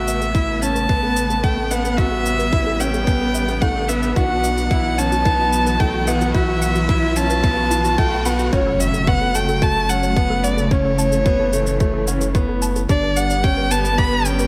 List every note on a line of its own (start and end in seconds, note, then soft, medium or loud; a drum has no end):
0.00 4.14 A1 medium
0.00 4.13 C#3 medium
0.00 1.96 A3 medium
0.00 8.49 B3 medium
0.00 0.25 F#4 medium
0.00 0.63 E5 medium
0.00 riser medium
0.08 0.15 E5 loud
0.08 shaker medium
0.21 0.26 A4 medium
0.21 shaker soft
0.35 0.42 E4 loud
0.35 0.57 E4 medium
0.35 kick loud
0.35 shaker soft
0.48 0.55 A4 medium
0.62 0.84 C#4 medium
0.62 1.45 A5 loud
0.62 shaker medium
0.76 0.80 B4 medium
0.76 shaker soft
0.89 1.34 B3 medium
0.89 1.00 E4 medium
0.89 kick loud
0.89 shaker soft
1.03 1.10 A4 loud
1.16 1.24 C#5 medium
1.16 shaker medium
1.30 1.34 A4 medium
1.30 shaker soft
1.44 1.66 A3 medium
1.44 1.72 G5 medium
1.44 1.51 A5 medium
1.44 kick loud
1.44 shaker soft
1.57 1.65 A4 medium
1.70 1.93 B3 medium
1.70 1.78 E5 loud
1.70 1.99 F#5 medium
1.70 shaker medium
1.84 1.89 A4 medium
1.84 shaker soft
1.98 4.14 G3 medium
1.98 2.05 E4 loud
1.98 2.42 F#4 medium
1.98 2.81 E5 loud
1.98 kick medium
1.98 shaker soft
2.12 2.19 A4 medium
2.26 shaker medium
2.39 2.43 B4 medium
2.39 shaker soft
2.53 2.75 E4 medium
2.53 2.63 E4 medium
2.53 kick medium
2.53 shaker soft
2.66 2.74 A4 medium
2.80 3.02 C#4 medium
2.80 2.87 C#5 medium
2.80 3.63 G5 loud
2.80 shaker medium
2.94 2.98 A4 medium
2.94 shaker soft
3.07 3.52 B3 medium
3.07 3.15 A5 medium
3.07 kick loud
3.07 shaker soft
3.21 3.28 A4 medium
3.35 3.42 E5 loud
3.35 shaker medium
3.48 3.53 A4 medium
3.48 shaker soft
3.61 3.84 A3 medium
3.61 3.69 E4 loud
3.61 3.90 F#5 medium
3.61 kick loud
3.61 shaker soft
3.76 3.83 A4 medium
3.88 4.11 B3 medium
3.88 4.17 E5 medium
3.88 shaker medium
4.03 4.07 B4 medium
4.03 shaker soft
4.16 8.50 B1 medium
4.16 8.49 E3 medium
4.16 8.49 F#3 medium
4.16 4.27 E4 medium
4.16 4.61 F#4 medium
4.16 4.99 F#5 loud
4.16 kick medium
4.16 shaker soft
4.30 4.37 F#4 loud
4.44 4.51 E5 medium
4.44 shaker medium
4.57 4.62 F#4 medium
4.57 shaker soft
4.71 4.93 E4 medium
4.71 4.78 B5 medium
4.71 kick loud
4.71 shaker soft
4.84 4.92 F#4 medium
4.98 5.21 C#4 medium
4.98 5.05 F#5 loud
4.98 5.81 A5 loud
4.98 shaker medium
5.12 5.16 F#4 medium
5.12 shaker soft
5.25 5.70 B3 medium
5.25 5.33 E4 loud
5.25 kick loud
5.25 shaker soft
5.39 5.46 F#4 medium
5.53 shaker medium
5.67 5.71 B4 medium
5.67 shaker soft
5.80 6.02 A3 medium
5.80 5.91 E4 medium
5.80 6.09 G5 medium
5.80 kick loud
5.80 shaker soft
5.94 6.01 F#4 loud
6.07 6.30 B3 medium
6.07 6.15 E5 medium
6.07 6.33 F#5 medium
6.07 shaker medium
6.21 6.25 F#4 medium
6.21 shaker soft
6.34 6.79 F#4 medium
6.34 7.18 E5 medium
6.34 6.42 B5 medium
6.34 kick medium
6.34 shaker soft
6.48 6.55 F#4 medium
6.62 6.69 F#5 loud
6.62 shaker medium
6.75 6.80 F#4 medium
6.75 shaker soft
6.89 6.96 E4 loud
6.89 7.12 E4 medium
6.89 kick loud
6.89 shaker soft
7.03 7.10 F#4 medium
7.16 7.39 C#4 medium
7.16 8.00 A5 loud
7.16 shaker medium
7.30 7.34 B4 medium
7.30 shaker soft
7.44 7.88 B3 medium
7.44 7.54 E4 medium
7.44 kick loud
7.44 shaker soft
7.57 7.64 F#4 loud
7.71 7.78 E4 medium
7.71 shaker medium
7.84 7.92 F#4 medium
7.84 shaker soft
7.98 8.21 A3 medium
7.98 8.03 E5 medium
7.98 8.27 G5 medium
7.98 kick loud
7.98 shaker soft
8.12 8.19 B5 loud
8.25 8.48 B3 medium
8.25 8.52 F#5 medium
8.25 8.30 B5 medium
8.25 shaker medium
8.39 8.46 F#4 medium
8.39 shaker soft
8.52 12.87 F#1 medium
8.52 12.85 C#3 medium
8.52 10.69 F#3 medium
8.52 12.85 A3 medium
8.52 8.97 C#4 medium
8.52 8.64 F#4 medium
8.52 8.82 C#5 medium
8.52 kick loud
8.52 impact medium
8.52 shaker soft
8.66 8.74 A4 loud
8.80 9.09 E5 loud
8.80 8.87 F#5 medium
8.80 shaker medium
8.94 8.98 A4 medium
8.94 shaker soft
9.07 9.30 B3 medium
9.07 9.36 F#5 loud
9.07 9.15 C#6 medium
9.07 kick loud
9.07 shaker soft
9.21 9.28 A4 medium
9.35 9.57 A3 medium
9.35 9.64 G5 loud
9.35 9.42 A5 loud
9.35 shaker medium
9.48 9.53 A4 medium
9.48 shaker soft
9.62 9.84 A3 medium
9.62 9.69 F#4 loud
9.62 9.91 A5 loud
9.62 kick loud
9.62 shaker soft
9.76 9.83 A4 medium
9.89 10.11 C#4 medium
9.89 10.45 F#5 loud
9.89 shaker medium
10.03 10.07 C#5 medium
10.03 shaker soft
10.17 10.61 B3 medium
10.17 10.27 F#4 medium
10.17 kick loud
10.17 shaker soft
10.30 10.37 A4 loud
10.44 10.73 D5 medium
10.44 10.51 F#5 medium
10.44 shaker medium
10.57 10.62 A4 medium
10.57 shaker soft
10.71 12.87 E3 medium
10.71 11.16 C#4 medium
10.71 12.35 C#5 loud
10.71 10.78 C#6 medium
10.71 kick loud
10.71 shaker soft
10.85 10.92 A4 medium
10.99 11.06 A5 loud
10.99 shaker medium
11.12 11.16 A4 medium
11.12 shaker soft
11.26 11.48 B3 medium
11.26 11.33 F#4 loud
11.26 kick loud
11.26 shaker soft
11.39 11.46 A4 medium
11.53 11.75 A3 medium
11.53 shaker medium
11.67 11.71 C#5 medium
11.67 shaker soft
11.80 12.03 A3 medium
11.80 11.91 F#4 medium
11.80 kick loud
11.80 shaker soft
11.94 12.01 A4 loud
12.07 12.30 C#4 medium
12.07 12.15 F#5 medium
12.07 shaker medium
12.21 12.25 A4 medium
12.21 shaker soft
12.35 12.79 B3 medium
12.35 12.42 C#6 medium
12.35 kick loud
12.35 shaker soft
12.49 12.56 A4 medium
12.62 12.69 A5 loud
12.62 shaker medium
12.76 12.80 A4 medium
12.76 shaker soft
12.89 14.47 G1 medium
12.89 14.47 D3 medium
12.89 14.47 G3 medium
12.89 14.47 B3 loud
12.89 13.34 D4 medium
12.89 12.96 G4 loud
12.89 13.18 D5 loud
12.89 kick loud
12.89 shaker soft
13.03 13.10 B4 medium
13.16 13.45 F#5 loud
13.16 shaker medium
13.30 13.34 D5 medium
13.30 shaker soft
13.44 13.66 C#4 medium
13.44 13.54 G4 medium
13.44 13.72 G5 loud
13.44 kick loud
13.44 shaker soft
13.57 13.64 B4 medium
13.71 13.93 B3 medium
13.71 13.78 G5 medium
13.71 13.99 A5 loud
13.71 shaker medium
13.85 13.89 B4 medium
13.85 shaker soft
13.98 14.21 B3 medium
13.98 14.27 B5 loud
13.98 14.06 D6 medium
13.98 kick loud
13.98 shaker soft
14.12 14.19 B4 medium
14.25 14.47 C#4 medium
14.25 14.47 G5 loud
14.25 14.33 B5 loud
14.25 shaker medium
14.39 14.44 B4 medium
14.39 shaker soft